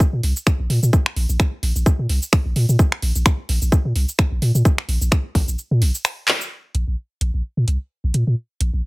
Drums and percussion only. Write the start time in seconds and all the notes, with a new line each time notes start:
0.00 kick, cabasa
0.23 open hi-hat
0.36 cabasa
0.47 finger snap, kick, cabasa
0.70 open hi-hat
0.83 cabasa
0.93 kick, cabasa
1.06 finger snap
1.16 open hi-hat
1.29 cabasa
1.40 finger snap, kick, cabasa
1.63 open hi-hat
1.76 cabasa
1.86 kick, cabasa
2.09 open hi-hat
2.22 cabasa
2.33 finger snap, kick, open hi-hat, cabasa
2.56 open hi-hat
2.69 cabasa
2.79 kick, cabasa
2.92 finger snap
3.02 open hi-hat
3.15 cabasa
3.26 finger snap, kick, cabasa
3.49 open hi-hat
3.62 cabasa
3.72 kick, cabasa
3.96 open hi-hat
4.09 cabasa
4.19 finger snap, kick, cabasa
4.42 open hi-hat
4.55 cabasa
4.65 kick, cabasa
4.78 finger snap
4.89 open hi-hat
5.02 cabasa
5.12 finger snap, kick, cabasa
5.35 kick, open hi-hat
5.48 cabasa
5.58 cabasa
5.82 open hi-hat
5.95 cabasa
6.05 finger snap, open hi-hat, cabasa
6.28 clap, open hi-hat
6.41 cabasa
6.75 closed hi-hat
7.21 closed hi-hat
7.68 closed hi-hat
8.14 closed hi-hat
8.61 closed hi-hat